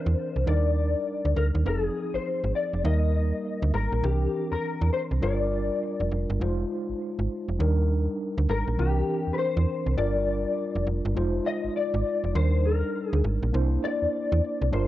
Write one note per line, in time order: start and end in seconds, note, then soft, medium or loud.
0.00 0.44 E3 medium
0.00 0.44 C4 medium
0.00 0.45 D4 medium
0.00 0.45 A#4 medium
0.00 0.43 C5 medium
0.06 0.15 E2 medium
0.36 0.45 C2 medium
0.46 0.95 D#2 loud
0.46 1.63 G3 medium
0.46 1.63 D4 medium
0.46 1.64 D#4 medium
0.46 1.64 A#4 medium
0.46 1.32 D5 medium
1.25 1.34 D2 medium
1.36 1.51 D2 medium
1.36 1.44 A#4 medium
1.55 1.64 D#2 medium
1.64 1.90 F1 loud
1.64 2.81 F3 medium
1.64 2.82 C4 medium
1.64 2.82 D#4 medium
1.64 2.83 G#4 medium
1.64 1.83 A4 medium
1.83 2.15 G#4 medium
2.14 2.18 G#1 soft
2.14 2.55 C5 loud
2.44 2.53 G#1 medium
2.55 2.84 D5 loud
2.73 2.82 F1 medium
2.83 3.32 D#2 loud
2.83 4.00 G3 medium
2.83 4.01 A#3 medium
2.83 4.01 D#4 medium
2.83 4.02 A#4 medium
2.83 3.73 D#5 loud
3.62 3.71 D2 medium
3.74 3.89 G#1 medium
3.74 4.04 A#4 medium
3.92 4.01 A#1 medium
4.02 4.27 C2 loud
4.02 5.19 E3 medium
4.02 5.20 C4 medium
4.02 5.20 D4 medium
4.02 4.53 G4 medium
4.02 5.20 A#4 medium
4.52 4.56 E2 medium
4.52 4.92 A#4 medium
4.81 4.90 E2 medium
4.93 5.01 C5 loud
5.11 5.20 C2 medium
5.21 5.70 G1 loud
5.21 6.38 G3 medium
5.21 6.38 D4 medium
5.21 6.39 F4 medium
5.21 6.39 A#4 medium
5.21 6.08 D5 medium
6.00 6.09 F1 medium
6.11 6.26 F1 medium
6.30 6.39 G1 loud
6.40 6.65 F1 loud
6.40 7.57 G#3 medium
6.40 7.57 D#4 medium
6.40 7.58 F4 medium
6.40 7.58 C5 medium
6.89 6.94 G#1 medium
7.19 7.28 G#1 medium
7.49 7.58 F1 medium
7.59 8.08 D#2 loud
7.59 8.76 G3 medium
7.59 8.76 D4 medium
7.59 8.76 D#4 medium
7.59 8.77 A#4 medium
8.38 8.47 D2 medium
8.49 8.64 G#1 medium
8.49 8.80 A#4 medium
8.68 8.77 A#1 medium
8.77 9.03 C2 loud
8.77 9.94 E3 medium
8.77 9.95 C4 medium
8.77 9.95 D4 medium
8.77 9.34 G4 medium
8.77 9.96 A#4 medium
9.27 9.32 E2 medium
9.33 9.38 B4 medium
9.38 9.97 C5 loud
9.57 9.66 E2 medium
9.86 9.95 C2 medium
9.96 10.45 G1 loud
9.96 11.13 G3 medium
9.96 11.14 D4 medium
9.96 11.14 F4 medium
9.96 11.14 A#4 medium
9.96 10.83 D5 loud
10.75 10.84 F1 medium
10.87 11.01 F1 loud
11.05 11.14 G1 loud
11.15 11.40 F1 loud
11.15 12.32 G#3 medium
11.15 12.32 D#4 medium
11.15 12.33 F4 medium
11.15 12.33 C5 medium
11.46 11.76 D#5 loud
11.64 11.69 G#1 medium
11.76 12.35 D5 loud
11.94 12.03 G#1 medium
12.24 12.33 F1 medium
12.34 12.83 D#2 loud
12.34 13.51 G3 medium
12.34 13.51 D4 medium
12.34 13.52 D#4 medium
12.34 13.52 A#4 medium
12.34 12.66 C5 loud
12.65 13.08 A#4 medium
13.08 13.20 G#4 medium
13.13 13.22 D2 loud
13.24 13.39 G#1 loud
13.43 13.52 A#1 medium
13.52 13.78 C2 loud
13.52 14.70 A#3 medium
13.52 14.70 D4 medium
13.52 14.70 E4 medium
13.52 14.71 C5 medium
13.84 14.73 D5 loud
14.02 14.07 E2 medium
14.32 14.41 E2 medium
14.62 14.71 C2 medium
14.71 14.88 G1 loud
14.71 14.88 G3 medium
14.71 14.88 D4 medium
14.71 14.88 F4 medium
14.71 14.88 A#4 medium
14.71 14.88 C5 medium